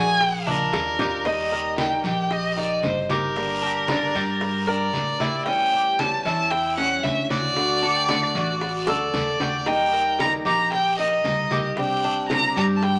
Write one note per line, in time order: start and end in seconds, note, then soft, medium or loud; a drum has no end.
0.00 0.69 A#1 loud
0.00 0.20 A3 soft
0.00 0.20 D4 soft
0.00 0.20 F#4 medium
0.00 0.46 G#4 medium
0.00 0.44 G#5 loud
0.20 muted steel-string acoustic guitar stroke medium
0.20 high bongo medium
0.20 high conga soft
0.20 long guiro medium
0.47 0.99 G#3 soft
0.47 0.98 D4 loud
0.47 0.98 D4 medium
0.47 0.97 F4 medium
0.47 1.27 A#4 medium
0.47 high bongo soft
0.47 high conga medium
0.73 1.98 D#2 medium
0.73 high bongo medium
0.73 short guiro medium
0.98 1.25 G#3 soft
0.98 1.25 D4 soft
0.98 1.24 F4 medium
0.98 1.25 G4 medium
0.98 low bongo loud
0.98 low conga medium
0.98 short guiro medium
1.25 1.76 D#3 medium
1.25 1.77 G3 medium
1.25 1.77 A#3 medium
1.25 1.52 D#4 medium
1.25 1.78 D#4 medium
1.25 1.78 G4 medium
1.25 1.78 D#5 medium
1.25 high bongo medium
1.25 high conga soft
1.25 long guiro medium
1.52 2.03 A#4 medium
1.52 high conga soft
1.77 2.03 D#3 medium
1.77 2.03 G3 medium
1.77 2.04 A#3 medium
1.77 2.03 D#4 medium
1.77 2.02 G4 medium
1.77 2.03 G5 medium
1.77 high bongo medium
1.77 high conga medium
1.77 short guiro medium
2.04 2.79 A#1 medium
2.04 2.29 A#3 soft
2.04 2.29 D#4 soft
2.04 2.29 G4 soft
2.04 2.56 G4 medium
2.04 2.34 G5 medium
2.04 high bongo soft
2.04 high conga soft
2.04 short guiro medium
2.30 2.52 D#5 medium
2.30 muted steel-string acoustic guitar stroke medium
2.30 high bongo medium
2.30 high conga soft
2.30 long guiro medium
2.52 2.60 D#5 medium
2.56 3.09 A#3 soft
2.56 3.09 D#4 soft
2.56 3.08 D#4 medium
2.56 3.08 G4 medium
2.56 2.84 D5 medium
2.56 high bongo soft
2.56 high conga soft
2.83 4.08 G1 medium
2.83 3.09 C5 medium
2.83 high bongo soft
2.83 low bongo medium
2.83 high conga medium
2.83 short guiro medium
3.09 3.35 A#3 soft
3.09 3.35 D#4 soft
3.09 3.35 G4 soft
3.09 3.61 G4 medium
3.09 4.69 A#4 medium
3.09 high bongo soft
3.09 high conga medium
3.09 short guiro medium
3.36 3.87 D3 medium
3.36 3.88 G3 medium
3.36 3.88 A#3 medium
3.36 3.88 D4 medium
3.36 3.88 G4 medium
3.36 high bongo medium
3.36 high conga soft
3.36 long guiro medium
3.62 4.13 D4 medium
3.62 3.87 G4 medium
3.62 high conga soft
3.88 4.14 D3 medium
3.88 4.14 G3 medium
3.88 4.14 A#3 medium
3.88 4.14 D4 medium
3.88 4.13 G4 medium
3.88 4.50 D5 loud
3.88 high bongo medium
3.88 high conga medium
3.88 short guiro medium
4.15 4.90 G2 medium
4.15 4.41 A#3 soft
4.15 4.40 D4 soft
4.15 4.40 G4 soft
4.15 4.66 G4 medium
4.15 high bongo soft
4.15 short guiro medium
4.41 muted steel-string acoustic guitar stroke medium
4.41 high bongo medium
4.41 high conga soft
4.41 long guiro medium
4.67 5.20 A#3 soft
4.67 5.20 D4 soft
4.67 5.19 G4 soft
4.67 5.18 A#4 medium
4.67 5.45 D5 medium
4.67 high bongo soft
4.67 high conga soft
4.93 6.18 A2 medium
4.93 high bongo soft
4.93 low bongo medium
4.93 high conga medium
4.93 short guiro medium
5.20 5.46 A#3 soft
5.20 5.46 D4 soft
5.20 5.45 E4 medium
5.20 5.46 G4 soft
5.20 high bongo soft
5.20 high conga medium
5.20 short guiro medium
5.46 5.98 E3 medium
5.46 5.98 G3 medium
5.46 5.72 C#4 medium
5.46 5.98 C#4 medium
5.46 5.99 E4 medium
5.46 6.01 G5 loud
5.46 high bongo medium
5.46 high conga soft
5.46 long guiro medium
5.73 6.24 G4 medium
5.73 high conga soft
5.99 6.24 E3 medium
5.99 6.24 G3 medium
5.99 6.25 C#4 medium
5.99 6.24 E4 medium
5.99 6.25 A5 medium
5.99 high bongo medium
5.99 high conga medium
5.99 short guiro medium
6.25 7.00 E2 medium
6.25 6.50 G3 soft
6.25 6.50 C#4 soft
6.25 6.50 E4 soft
6.25 6.76 E4 medium
6.25 6.52 A5 medium
6.25 high bongo soft
6.25 high conga soft
6.25 short guiro medium
6.51 6.77 G5 loud
6.51 muted steel-string acoustic guitar stroke medium
6.51 high bongo medium
6.51 high conga soft
6.51 long guiro medium
6.77 7.30 G3 soft
6.77 7.29 C#4 medium
6.77 7.30 C#4 soft
6.77 7.29 E4 soft
6.77 7.05 F#5 medium
6.77 high bongo soft
6.77 high conga soft
7.03 8.28 D2 medium
7.03 7.30 E5 medium
7.03 high bongo soft
7.03 low bongo medium
7.03 high conga medium
7.03 short guiro medium
7.30 7.56 G3 soft
7.30 7.56 C#4 soft
7.30 7.56 E4 soft
7.30 7.81 F#4 medium
7.30 8.84 D5 loud
7.30 high bongo soft
7.30 high conga medium
7.30 short guiro medium
7.56 8.08 D3 medium
7.56 8.08 A3 medium
7.56 8.09 D4 medium
7.56 8.09 F#4 medium
7.56 high bongo medium
7.56 high conga soft
7.56 long guiro medium
7.82 8.34 D4 medium
7.82 7.98 F#5 loud
7.82 high conga soft
7.96 8.11 G5 loud
8.09 8.34 D3 medium
8.09 8.35 A3 medium
8.09 8.35 D4 medium
8.09 8.34 F#4 medium
8.09 8.25 F#5 loud
8.09 high bongo medium
8.09 high conga medium
8.09 short guiro medium
8.23 8.75 D5 medium
8.35 8.84 A1 medium
8.35 8.62 A3 soft
8.35 8.61 D4 soft
8.35 8.86 F#4 medium
8.35 8.61 F#4 soft
8.35 high bongo soft
8.35 high conga soft
8.35 short guiro medium
8.61 muted steel-string acoustic guitar stroke soft
8.61 high bongo medium
8.61 high conga soft
8.61 long guiro medium
8.87 9.12 D2 medium
8.87 9.40 A3 soft
8.87 9.40 D4 soft
8.87 9.39 F#4 soft
8.87 9.39 A4 medium
8.87 9.69 D5 medium
8.87 high bongo loud
8.87 high conga soft
9.13 10.39 D#2 medium
9.13 low bongo medium
9.13 high conga medium
9.13 short guiro medium
9.40 9.67 A3 soft
9.40 9.66 D4 soft
9.40 9.66 F#4 soft
9.40 9.66 G4 medium
9.40 low bongo medium
9.40 high conga medium
9.40 short guiro medium
9.66 10.18 D#3 medium
9.66 10.19 G3 medium
9.66 10.19 A#3 medium
9.66 9.92 D#4 medium
9.66 10.19 D#4 medium
9.66 10.19 G4 medium
9.66 10.20 G5 loud
9.66 high bongo medium
9.66 long guiro medium
9.93 10.44 A#4 medium
9.93 high conga soft
10.19 10.45 D#3 medium
10.19 10.45 G3 medium
10.19 10.45 A#3 medium
10.19 10.45 D#4 medium
10.19 10.45 G4 medium
10.19 10.32 A#5 loud
10.19 high bongo medium
10.19 high conga medium
10.19 short guiro medium
10.45 11.21 A#1 medium
10.45 10.72 A#3 soft
10.45 10.72 D#4 soft
10.45 10.97 G4 medium
10.45 10.71 G4 soft
10.45 10.71 A#5 medium
10.45 high bongo soft
10.45 high conga soft
10.45 short guiro medium
10.72 10.97 G5 loud
10.72 muted steel-string acoustic guitar stroke medium
10.72 high bongo medium
10.72 high conga soft
10.72 long guiro medium
10.98 11.51 A#3 soft
10.98 11.50 D#4 medium
10.98 11.51 D#4 soft
10.98 11.50 G4 medium
10.98 11.74 D#5 medium
10.98 high bongo soft
10.98 high conga soft
11.24 12.50 C2 medium
11.24 high bongo soft
11.24 low bongo medium
11.24 high conga medium
11.24 short guiro medium
11.51 11.77 A#3 soft
11.51 11.77 D#4 soft
11.51 11.77 G4 soft
11.51 12.03 G4 medium
11.51 high bongo soft
11.51 high conga medium
11.51 short guiro medium
11.77 12.29 C3 medium
11.77 12.29 G3 medium
11.77 12.30 C4 medium
11.77 12.30 D4 medium
11.77 12.30 G4 medium
11.77 12.27 G5 medium
11.77 high bongo medium
11.77 high conga soft
11.77 long guiro medium
12.04 12.55 D4 medium
12.04 high conga soft
12.29 12.55 C3 medium
12.29 12.56 G3 medium
12.29 12.56 C4 medium
12.29 12.56 D4 medium
12.29 12.55 G4 medium
12.29 12.54 A#5 loud
12.29 high bongo medium
12.29 high conga medium
12.29 short guiro medium
12.56 12.99 G2 medium
12.56 12.81 C4 soft
12.56 12.81 D4 soft
12.56 12.82 G4 soft
12.56 12.99 G4 medium
12.56 12.66 A#5 medium
12.56 high bongo soft
12.56 high conga soft
12.56 short guiro medium
12.77 12.85 A5 medium
12.82 12.99 G5 loud
12.82 muted steel-string acoustic guitar stroke medium
12.82 high bongo medium
12.82 high conga soft
12.82 long guiro medium